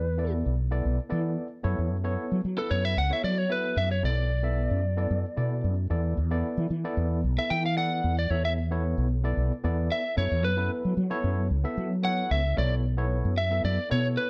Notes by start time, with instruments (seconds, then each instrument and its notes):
Already playing: fretless electric bass E2, lead electric guitar B4
0.18 tine electric piano B3 E4 A4 D5
0.46 fretless electric bass B1
0.71 tine electric piano B3 E4 A4 D5
0.85 fretless electric bass B1
1.09 fretless electric bass E3, tine electric piano B3 E4 A4 D5
1.63 fretless electric bass F#2, tine electric piano B3 E4 A4 C#5
1.78 fretless electric bass E2
1.91 fretless electric bass F#2
2.04 tine electric piano B3 E4 A4 C#5
2.31 fretless electric bass F#3
2.44 fretless electric bass F#3
2.57 tine electric piano B3 E4 A4 B4, lead electric guitar A4
2.70 fretless electric bass F#2, lead electric guitar C#5
2.85 lead electric guitar E5
2.97 fretless electric bass C#2, lead electric guitar F#5
3.10 tine electric piano B3 E4 A4 C#5, lead electric guitar E5
3.24 fretless electric bass F#3, lead electric guitar D5
3.39 lead electric guitar C#5
3.49 tine electric piano B3 E4 A4 E5, lead electric guitar B4
3.76 fretless electric bass F#2, lead electric guitar E5
3.91 lead electric guitar C#5
4.03 fretless electric bass B1, tine electric piano B3 E4 A4 D5, lead electric guitar D5
4.43 tine electric piano B3 E4 A4 E5
4.71 fretless electric bass F#2
4.97 tine electric piano B3 E4 A4 D5
5.10 fretless electric bass F#2
5.37 fretless electric bass B2, tine electric piano B3 E4 A4 D5
5.64 fretless electric bass F#2
5.90 fretless electric bass E2, tine electric piano B3 E4 A4 D5
6.17 fretless electric bass E2
6.31 tine electric piano B3 E4 A4 D5
6.57 fretless electric bass E3
6.70 fretless electric bass E3
6.84 tine electric piano B3 E4 A4 D5
6.97 fretless electric bass E2
7.24 fretless electric bass B1
7.38 tine electric piano B3 E4 A4 E5, lead electric guitar E5
7.50 fretless electric bass E3, lead electric guitar G5
7.66 lead electric guitar F5
7.77 tine electric piano B3 E4 A4 D5, lead electric guitar F#5
8.04 fretless electric bass E2
8.19 lead electric guitar D5
8.30 fretless electric bass E2, tine electric piano B3 E4 A4 E5, lead electric guitar C#5
8.45 lead electric guitar E5
8.71 tine electric piano B3 E4 A4 C#5
8.97 fretless electric bass B1
9.24 tine electric piano B3 E4 A4 D5
9.37 fretless electric bass B1
9.64 fretless electric bass E2, tine electric piano B3 E4 A4 D5
9.92 lead electric guitar E5
10.17 fretless electric bass F#2, tine electric piano B3 E4 A4 C#5, lead electric guitar C#5
10.31 fretless electric bass E2
10.44 fretless electric bass F#2, lead electric guitar B4
10.57 tine electric piano B3 E4 A4 B4
10.85 fretless electric bass F#3
10.97 fretless electric bass F#3
11.10 tine electric piano B3 E4 A4 C#5
11.23 fretless electric bass F#2
11.50 fretless electric bass C#2
11.64 tine electric piano B3 E4 A4 E5
11.77 fretless electric bass F#3
12.03 tine electric piano B3 E4 A4 C#5, lead electric guitar F#5
12.31 fretless electric bass C#2, lead electric guitar E5
12.57 fretless electric bass B1, tine electric piano B3 E4 A4 C#5, lead electric guitar D5
12.97 tine electric piano B3 E4 A4 C#5
13.24 fretless electric bass F#2
13.38 lead electric guitar E5
13.50 tine electric piano B3 E4 A4 E5
13.64 fretless electric bass F#2, lead electric guitar D5
13.90 fretless electric bass B2, tine electric piano B3 E4 A4 C#5, lead electric guitar C#5
14.17 lead electric guitar B4